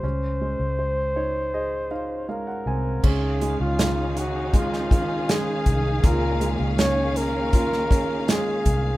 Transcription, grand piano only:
X:1
M:4/4
L:1/16
Q:1/4=80
K:Db
V:1 name="Grand piano"
z6 d2 e2 f2 f g a2 | z16 | z16 |]
V:2 name="Grand piano"
D2 A,2 c2 E2 A2 E2 A,2 C2 | D2 A,2 D,4 A,2 E,2 A,4 | B,,2 A,2 D4 F2 D2 A,4 |]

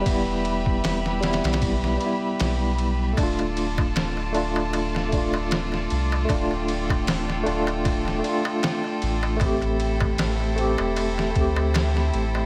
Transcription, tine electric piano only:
X:1
M:4/4
L:1/8
Q:"Swing 16ths" 1/4=77
K:Ddor
V:1 name="Tine electric piano"
[G,B,E]3 [G,B,E]2 [G,B,E]3 | [A,DF]3 [A,DF]2 [A,DF]3 | [A,DF]3 [A,DF]2 [A,DF]3 | [A,CG]3 [A,CG]2 [A,CG]3 |]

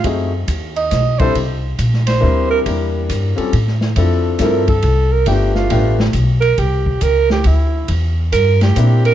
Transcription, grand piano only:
X:1
M:3/4
L:1/8
Q:"Swing" 1/4=138
K:Cmix
V:1 name="Grand piano"
[A,C^D^F_A] z4 [G,C=DE=A] | z4 [G,CDEB]2 | [G,B,DEB]3 [G,C_DFA] z2 | [F,CDEA]2 [F,CDEA] z3 |
[A,=B,DFG]2 [A,B,DFG] z3 | z6 | z4 [B,CDEG]2 |]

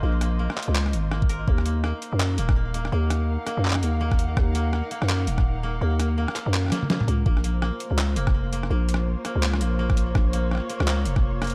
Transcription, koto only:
X:1
M:4/4
L:1/8
Q:"Swing 16ths" 1/4=166
K:Bbm
V:1 name="Koto"
B, B, B,3 z B, B | B, B, B,3 B, B, B, | B,3 B, B, B, B,2- | B, B, B, B, B,3 B, |
B, B, B,3 B, B, B, | B, B, B,3 B, B, B, | B,3 B, B, B, B,2- | B, B, B, B, B,3 B, |]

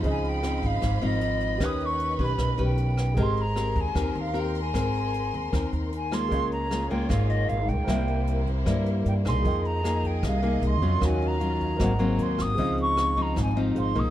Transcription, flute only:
X:1
M:4/4
L:1/8
Q:1/4=153
K:Ab
V:1 name="Flute"
a g2 f2 e3 | e' d'2 =b2 g3 | c' b2 a2 f g a- | a6 a c'- |
c' b2 g f e f g- | g3 z3 g c'- | c' b2 g f2 c'2 | a b4- b c' e'- |
e' d'2 b a z c' e' |]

